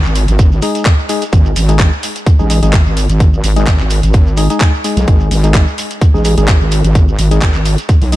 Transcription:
0.04 0.26 G#1 medium
0.04 clap soft
0.04 shekere soft
0.15 open hi-hat loud
0.15 shekere medium
0.28 0.61 G#1 medium
0.28 closed hi-hat medium
0.28 shekere soft
0.39 kick loud
0.39 closed hi-hat medium
0.39 shekere medium
0.52 shekere soft
0.62 0.85 G#3 medium
0.62 0.85 D#4 medium
0.62 0.85 G#4 medium
0.62 open hi-hat loud
0.62 shekere medium
0.75 closed hi-hat soft
0.75 shekere soft
0.85 kick loud
0.85 clap loud
0.85 closed hi-hat medium
0.85 shekere medium
0.99 shekere soft
1.09 1.24 G#3 medium
1.09 1.24 D#4 medium
1.09 1.24 G#4 medium
1.09 open hi-hat loud
1.09 shekere loud
1.22 closed hi-hat soft
1.22 shekere soft
1.33 1.54 G#1 loud
1.33 kick loud
1.33 closed hi-hat medium
1.33 shekere medium
1.45 shekere soft
1.56 1.90 G#1 loud
1.56 open hi-hat loud
1.56 shekere medium
1.69 1.91 G#3 medium
1.69 1.91 D#4 medium
1.69 1.91 G#4 medium
1.69 closed hi-hat soft
1.69 shekere soft
1.79 kick loud
1.79 clap loud
1.79 closed hi-hat medium
1.79 shekere soft
1.92 shekere soft
2.03 open hi-hat loud
2.03 shekere loud
2.16 closed hi-hat medium
2.16 shekere soft
2.26 kick loud
2.26 closed hi-hat medium
2.26 shekere medium
2.39 2.61 A1 loud
2.39 2.48 G#3 medium
2.39 2.48 D#4 medium
2.39 2.48 G#4 medium
2.39 shekere soft
2.50 2.60 G#3 medium
2.50 2.60 D#4 medium
2.50 2.60 G#4 medium
2.50 open hi-hat loud
2.50 shekere loud
2.63 2.84 G#1 loud
2.63 2.76 G#3 medium
2.63 2.76 D#4 medium
2.63 2.76 G#4 medium
2.63 closed hi-hat soft
2.63 shekere soft
2.73 kick loud
2.73 clap loud
2.73 closed hi-hat medium
2.73 shekere medium
2.86 3.07 G#1 loud
2.86 shekere soft
2.97 open hi-hat loud
2.97 shekere medium
3.09 3.42 G#1 medium
3.09 closed hi-hat medium
3.09 shekere soft
3.20 kick loud
3.20 closed hi-hat medium
3.20 shekere soft
3.33 shekere soft
3.44 3.78 G#1 loud
3.44 open hi-hat loud
3.44 shekere medium
3.56 3.69 G#3 medium
3.56 3.69 D#4 medium
3.56 3.70 G#4 loud
3.56 closed hi-hat medium
3.56 shekere soft
3.67 kick loud
3.67 clap loud
3.67 closed hi-hat medium
3.67 shekere medium
3.79 4.01 G#1 loud
3.79 clap soft
3.79 shekere soft
3.90 open hi-hat loud
3.90 shekere medium
4.03 4.48 G#1 medium
4.03 closed hi-hat medium
4.03 shekere soft
4.13 kick loud
4.13 closed hi-hat medium
4.13 shekere soft
4.27 shekere soft
4.37 4.48 G#3 medium
4.37 4.48 D#4 medium
4.37 4.48 G#4 medium
4.37 open hi-hat loud
4.37 shekere medium
4.50 4.72 G#3 medium
4.50 4.72 D#4 medium
4.50 4.72 G#4 loud
4.50 closed hi-hat soft
4.50 shekere soft
4.60 kick loud
4.60 clap loud
4.60 closed hi-hat medium
4.60 shekere soft
4.74 shekere soft
4.84 5.41 G#3 medium
4.84 5.41 D#4 medium
4.84 5.41 G#4 medium
4.84 open hi-hat loud
4.84 shekere medium
4.97 5.06 B1 loud
4.97 closed hi-hat medium
4.97 shekere soft
5.07 5.29 G#1 loud
5.07 kick loud
5.07 closed hi-hat medium
5.07 shekere soft
5.20 shekere soft
5.31 5.65 G#1 loud
5.31 open hi-hat loud
5.31 shekere medium
5.44 5.66 G#3 medium
5.44 5.66 D#4 medium
5.44 5.66 G#4 medium
5.44 closed hi-hat medium
5.44 shekere soft
5.54 kick loud
5.54 clap loud
5.54 closed hi-hat medium
5.54 shekere soft
5.67 shekere soft
5.78 open hi-hat loud
5.78 shekere medium
5.91 closed hi-hat medium
5.91 shekere soft
6.01 kick loud
6.01 closed hi-hat medium
6.01 shekere soft
6.14 6.36 A1 medium
6.14 6.23 G#3 medium
6.14 6.23 D#4 medium
6.14 6.23 G#4 medium
6.14 shekere soft
6.25 6.35 G#3 medium
6.25 6.35 D#4 medium
6.25 6.35 G#4 medium
6.25 open hi-hat loud
6.25 shekere medium
6.38 6.59 G#1 loud
6.38 6.51 G#3 medium
6.38 6.51 D#4 medium
6.38 6.51 G#4 medium
6.38 closed hi-hat medium
6.38 shekere soft
6.48 kick loud
6.48 clap loud
6.48 closed hi-hat medium
6.48 shekere soft
6.61 6.82 G#1 loud
6.61 shekere soft
6.71 open hi-hat loud
6.71 shekere medium
6.84 7.17 G#1 medium
6.84 closed hi-hat medium
6.84 shekere soft
6.95 kick loud
6.95 closed hi-hat medium
6.95 shekere medium
7.08 shekere soft
7.19 7.53 G#1 loud
7.19 open hi-hat loud
7.19 shekere medium
7.31 7.44 G#3 medium
7.31 7.44 D#4 medium
7.31 7.44 G#4 loud
7.31 closed hi-hat medium
7.31 shekere soft
7.41 kick loud
7.41 clap loud
7.41 closed hi-hat medium
7.41 shekere soft
7.54 7.76 G#1 loud
7.54 clap soft
7.54 shekere soft
7.65 open hi-hat loud
7.65 shekere medium
7.78 closed hi-hat medium
7.78 shekere soft
7.89 kick loud
7.89 closed hi-hat medium
7.89 shekere medium
8.02 8.16 B1 loud
8.02 open hi-hat medium
8.02 shekere soft
8.12 8.16 G#3 medium
8.12 8.16 D#4 medium
8.12 8.16 G#4 medium
8.12 open hi-hat loud
8.12 shekere medium

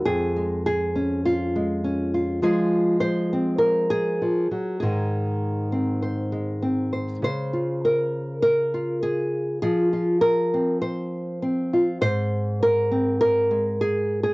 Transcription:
0.00 0.36 G#3 soft
0.05 2.41 F2 medium
0.05 0.65 G#4 medium
0.36 1.55 G#3 soft
0.66 1.25 G#4 medium
0.95 1.83 C#4 soft
1.25 2.13 F4 medium
1.56 2.43 G#3 soft
1.84 2.40 C#4 soft
2.14 2.42 F4 soft
2.42 4.20 F3 medium
2.42 4.21 G#3 soft
2.42 3.00 F4 soft
2.42 3.32 G#4 medium
3.00 3.58 C5 medium
3.33 3.90 C4 soft
3.58 4.50 A#4 medium
3.90 4.79 G#4 medium
4.22 4.51 F3 medium
4.51 4.81 F#3 medium
4.80 7.19 G#2 medium
4.80 7.23 D#3 soft
4.80 6.32 G#3 soft
4.80 5.71 G#4 medium
5.72 6.61 C4 soft
6.02 6.91 C5 soft
6.32 7.53 G#3 soft
6.62 7.23 C4 soft
6.93 7.19 C5 soft
7.22 9.59 C#3 medium
7.22 8.43 C5 medium
7.53 8.73 F4 soft
7.85 8.41 A#4 medium
8.42 9.02 A#4 medium
8.74 9.60 F4 soft
9.03 9.61 G#4 medium
9.62 11.98 F3 medium
9.62 10.52 G#4 medium
9.93 10.21 F4 soft
10.21 10.81 A#4 medium
10.54 11.41 C4 soft
10.82 11.71 C5 medium
11.42 12.90 C4 soft
11.73 12.01 F4 soft
12.01 14.34 G#2 medium
12.01 12.61 C5 loud
12.63 13.20 A#4 medium
12.91 13.80 C4 soft
13.21 14.34 A#4 medium
13.51 14.34 G#3 soft
13.81 14.22 G#4 medium
14.23 14.34 G#4 medium

